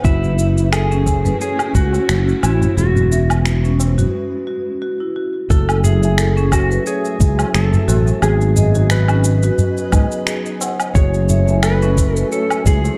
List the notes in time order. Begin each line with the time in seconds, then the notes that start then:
0.04 F#1 A3 C#4 E4 F#4, kick, shaker
0.23 tabla ge, shaker
0.39 E5, shaker
0.57 E5, shaker
0.72 G#4 A4, finger snap, low woodblock, shaker
0.91 C#4, shaker
1.06 kick, tabla na, shaker
1.25 B4, tabla ge, shaker
1.40 G#4 C#5, shaker
1.59 low woodblock, shaker
1.75 C#2 F#4, kick, shaker
1.93 tabla na, shaker
2.09 F#1, finger snap, shaker
2.27 tabla tin, shaker
2.43 A1 E4 F#4, tabla na, low woodblock, shaker
2.61 tabla tin, tabla ge, shaker
2.77 E1 G#3 F#4 G#4 B4, shaker
2.96 tabla ge, shaker
3.11 E5, shaker
3.30 F#4, tabla tin, low woodblock, shaker
3.46 finger snap, shaker
3.64 C#4, shaker
3.79 tabla na, tabla tin, shaker
3.98 F#4, tabla ge, shaker
4.47 F#4
4.82 F#4
5.00 E4
5.16 F#4
5.49 F#1 F#3 A3 E4 F#4 A4 E5 G#5, kick, shaker
5.69 low woodblock, shaker
5.84 G#4 E5, tabla ge, shaker
6.01 F#3 A3 E4 E5 G#5, shaker
6.18 A4, finger snap, shaker
6.37 C#4, shaker
6.52 F#4, kick, tabla na, low woodblock, shaker
6.71 B4, shaker
6.86 G#4 C#5, shaker
7.05 shaker
7.18 C#2 F#3 A3 E4, kick, shaker
7.22 G#5
7.39 tabla na, low woodblock, shaker
7.54 F#1 A4, finger snap, shaker
7.73 tabla tin, tabla ge, shaker
7.88 A1 F#4, tabla na, shaker
8.07 tabla tin, shaker
8.21 G#1 F#3 B3 D#4 F#4 G#4 B4 D#5, low woodblock, shaker
8.41 shaker
8.56 D#5, tabla ge, shaker
8.73 F#3 B3 D#4 F#4, tabla tin, shaker
8.77 G#4
8.90 B4, finger snap, shaker
9.08 C#4, low woodblock, shaker
9.24 tabla tin, shaker
9.43 F#4, shaker
9.58 tabla ge, shaker
9.77 tabla tin, shaker
9.90 G#2 F#3 B3 D#4 D#5, kick, tabla na, low woodblock, shaker
9.95 G#4
10.12 shaker
10.27 G#4, finger snap, shaker
10.46 shaker
10.61 F#5, tabla na, shaker
10.80 tabla tin, low woodblock, shaker
10.94 F#1 F#3 A3 E4 F#4 G#4 C#5 E5, kick, shaker
11.14 shaker
11.29 E5, tabla ge, shaker
11.46 F#3 A3 E4 E5 G#5, shaker
11.63 A4 B4, finger snap, low woodblock, shaker
11.82 C#4, shaker
11.97 kick, tabla na, shaker
12.16 A4 B4, shaker
12.32 A4 C#5, shaker
12.50 low woodblock, shaker
12.64 C#2 F#3 A3 E4 G#4 G#5, kick, shaker
12.84 tabla na, shaker